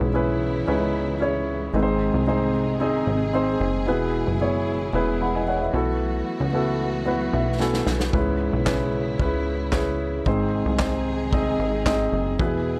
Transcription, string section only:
0.00 1.73 C#3 medium
0.00 1.73 E3 medium
0.00 5.70 G#3 medium
0.00 1.73 B3 medium
0.00 1.73 E4 medium
1.74 3.85 C3 medium
1.74 3.85 D#3 medium
1.74 3.85 D#4 medium
1.74 5.69 G#4 medium
3.87 5.71 B2 medium
3.87 10.22 E3 medium
3.87 5.72 E4 medium
5.74 8.11 F#3 medium
5.74 8.11 A3 medium
5.74 10.22 B3 medium
5.74 8.11 F#4 medium
8.13 10.24 C#3 medium
8.13 10.24 G#3 medium
8.13 10.24 E4 medium
10.26 12.37 C3 medium
10.26 12.37 D#3 medium
10.26 12.37 G#3 medium
10.26 12.37 D#4 medium
10.26 12.37 G#4 medium
12.39 12.80 B2 medium
12.39 12.80 G#3 medium
12.39 12.80 E4 medium
12.39 12.80 G#4 medium

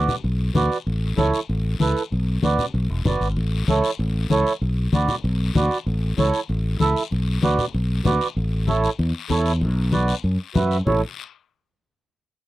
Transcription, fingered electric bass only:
0.24 0.49 B1 medium
0.55 0.68 D2 medium
0.87 1.12 A1 medium
1.18 1.30 C#2 medium
1.49 1.74 A1 medium
1.80 1.93 C#2 medium
2.12 2.37 B1 loud
2.43 2.56 D2 loud
2.74 2.87 B1 medium
2.90 3.04 E1 medium
3.05 3.19 F#1 medium
3.21 3.35 G#1 medium
3.37 3.62 A1 loud
3.68 3.80 C#2 medium
3.99 4.24 A1 medium
4.30 4.43 C#2 medium
4.61 4.87 B1 medium
4.93 5.05 D2 medium
5.24 5.49 B1 loud
5.55 5.68 D2 medium
5.86 6.12 A1 medium
6.18 6.30 C#2 medium
6.49 6.74 A1 medium
6.81 6.93 C#2 medium
7.12 7.37 B1 medium
7.43 7.56 D2 medium
7.74 7.99 B1 medium
8.05 8.18 D2 medium
8.36 8.87 A1 medium
8.99 9.12 E2 loud
9.30 9.63 E2 loud
9.61 10.11 B1 loud
10.24 10.36 F#2 medium
10.55 10.80 F#2 medium
10.87 11.01 A1 loud

